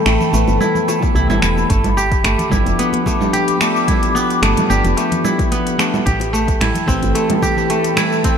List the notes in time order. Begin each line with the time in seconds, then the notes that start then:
Already playing: E3 A3 C4 E4 A4 B4 E5 G5 A5 B5
0.06 A1 A3, finger snap, cabasa
0.21 low conga, cabasa
0.32 A1 E3 A3 B3 C4, cabasa
0.36 B4
0.48 G1, high bongo, cabasa
0.60 E4, low conga, cabasa
0.75 low conga, cabasa
0.88 A3, high bongo, cabasa
1.00 E3 A3 B3 C4, kick, high bongo, high conga, cabasa
1.04 G4
1.15 C2 E4, cabasa
1.29 G1 E4, high conga, low conga, cabasa
1.42 E1 E4, finger snap, cabasa
1.57 high bongo, high conga, cabasa
1.70 G1 A3 G4 D6, kick, closed hi-hat, cabasa
1.84 closed hi-hat, high bongo, low conga, cabasa
1.97 G4, cabasa
2.12 kick, closed hi-hat, cabasa
2.24 G1 A3, finger snap, closed hi-hat, cabasa
2.39 closed hi-hat, low conga, cabasa
2.50 G1 F3 G3 B3 D4 E4, kick, low conga, cabasa
2.54 G4
2.66 F1, closed hi-hat, high bongo, cabasa
2.79 B3, closed hi-hat, cabasa
2.93 closed hi-hat, high conga
3.06 A3, kick, high bongo, low conga, cabasa
3.19 F3 G3 B3 D4 G4, high conga, low conga, cabasa
3.33 G4, closed hi-hat, cabasa
3.48 closed hi-hat, high conga, cabasa
3.59 F3 G3 A3 B3 D4 A4, finger snap, cabasa
3.76 cabasa
3.88 E4, kick, closed hi-hat, low conga, cabasa
4.02 closed hi-hat, high bongo, high conga, cabasa
4.15 B3, cabasa
4.30 closed hi-hat, cabasa
4.42 G1 A3, finger snap, closed hi-hat, cabasa
4.57 closed hi-hat, low conga, cabasa
4.68 G1 F3 G3 B3 D4 G4 B4, cabasa
4.84 F1, closed hi-hat, high bongo, cabasa
4.97 A3, closed hi-hat, cabasa
5.12 closed hi-hat, low conga, cabasa
5.24 E4, high bongo, low conga, cabasa
5.38 kick, closed hi-hat, high bongo, high conga, cabasa
5.52 B3, closed hi-hat, cabasa
5.66 closed hi-hat, high conga, cabasa
5.78 F3 G3 A3 B3 D4 G4, finger snap, cabasa
5.93 high bongo, high conga, low conga, cabasa
6.06 A1 G4 A4 G5 A5 B5, kick, closed hi-hat, cabasa
6.20 closed hi-hat, high bongo, cabasa
6.33 A3, cabasa
6.48 kick, closed hi-hat, cabasa
6.61 A1 E4, finger snap, closed hi-hat, low conga, cabasa
6.75 closed hi-hat, low conga, cabasa
6.86 A1 E3 A3 C4 G4 B4, kick, cabasa
7.02 G1, closed hi-hat, high bongo, cabasa
7.15 A3, closed hi-hat, cabasa
7.30 closed hi-hat, high conga, low conga
7.42 G4, kick, high bongo, low conga, cabasa
7.56 E3 A3 C4 G4 B4, high conga, cabasa
7.70 A3, closed hi-hat, cabasa
7.84 closed hi-hat, high conga, cabasa
7.95 E3 A3 C4 E4 A4 B4, finger snap, low conga, cabasa
8.12 cabasa
8.24 C4, kick, closed hi-hat, cabasa